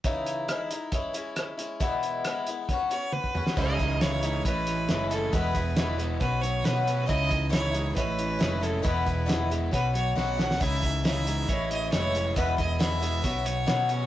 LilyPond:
<<
  \new Staff \with { instrumentName = "Fiddle" } { \time 4/4 \key e \major \tempo 4 = 136 r1 | r2 r8 cis''8 b'4 | dis''4 cis''4 b'4. a'8 | b'4. r8 b'8 cis''8 b'4 |
dis''4 cis''4 b'4. a'8 | b'4. r8 b'8 cis''8 fis''4 | e''4 e''4 cis''8 dis''8 cis''4 | b'8 dis''8 e''4. cis''4. | }
  \new Staff \with { instrumentName = "Steel-string acoustic guitar" } { \time 4/4 \key e \major <cis e gis dis' e'>4 <e gis dis' e'>8 <gis dis' e'>8 <e gis cis' e'>8 <gis cis' e'>4 <gis cis' e'>8 | <e, b, e gis b e'>4 <e gis b e'>8 <e gis b e'>8 <fis b cis' fis'>8 <b cis' fis'>4 <b cis' fis'>8 | <cis e gis dis' e'>8 <gis dis' e'>8 <cis e gis dis' e'>8 <gis dis' e'>8 <e gis cis' e'>4 <a, e gis cis' e'>8 <gis cis' e'>8 | <e, b, e gis b e'>8 <e gis b e'>8 <e, b, e gis b e'>8 <e gis b e'>8 <fis b cis' fis'>4 <b, fis b cis' fis'>8 <b cis' fis'>8 |
<cis e gis dis' e'>8 <gis dis' e'>8 <cis e gis dis' e'>8 <gis dis' e'>8 <e gis cis' e'>4 <a, e gis cis' e'>8 <gis cis' e'>8 | <e, b, e gis b e'>8 <e gis b e'>8 <e, b, e gis b e'>8 <e gis b e'>8 <fis b cis' fis'>4 <b, fis b cis' fis'>8 <b cis' fis'>8 | <cis e gis dis' e'>8 <gis dis' e'>8 <cis e gis dis' e'>8 <gis dis' e'>8 <e gis cis' e'>4 <a, e gis cis' e'>8 <gis cis' e'>8 | <e, b, e gis b e'>8 <e gis b e'>8 <e, b, e gis b e'>8 <e gis b e'>8 <fis b cis' fis'>4 <b, fis b cis' fis'>8 <b cis' fis'>8 | }
  \new Staff \with { instrumentName = "Overdriven electric guitar" } { \clef bass \time 4/4 \key e \major r1 | r1 | cis8 e8 e8 gis8 a,8 e8 gis8 cis'8 | e,8 b,8 e8 gis8 b,8 fis8 b8 cis'8 |
cis8 e8 e8 gis8 a,8 e8 gis8 cis'8 | e,8 b,8 e8 gis8 b,8 fis8 b8 cis'8 | cis8 e8 e8 gis8 a,8 e8 gis8 cis'8 | e,8 b,8 e8 gis8 b,8 fis8 b8 cis'8 | }
  \new Staff \with { instrumentName = "Fingered electric bass" } { \clef bass \time 4/4 \key e \major r1 | r1 | cis,2 a,,4 fis,,4 | e,,2 b,,4 b,4 |
cis,2 a,,4 f,,4 | e,,2 b,,4 b,,4 | cis,2 a,,4 f,,4 | e,,2 b,,4 b,4 | }
  \new DrumStaff \with { instrumentName = "Drums" } \drummode { \time 4/4 <hh bd>8 hh8 <hh ss>8 hh8 <hh bd>8 hh8 <hh ss>8 hh8 | <hh bd>8 hh8 <hh ss>8 hh8 <hh bd>8 hh8 tommh16 bd16 toml16 sn16 | <cymc bd>8 <hh bd>8 <hh sn>8 hh8 <hh bd>8 hh8 <hh sn>8 hh8 | <hh bd>8 <hh bd>8 <hh sn>8 hh8 <hh bd>8 hh8 <hh sn>8 hh8 |
<hh bd>8 <hh bd>8 <hh sn>8 hh8 <hh bd>8 hh8 <hh sn>8 hh8 | <hh bd>8 <hh bd>8 <hh sn>8 hh8 <hh bd>8 hh8 sn8 sn16 sn16 | <hh bd>8 <hh bd>8 <hh sn>8 hh8 <hh bd>8 hh8 <hh sn>8 hh8 | <hh bd>8 <hh bd>8 <hh sn>8 hh8 <hh bd>8 hh8 <hh sn>8 hh8 | }
>>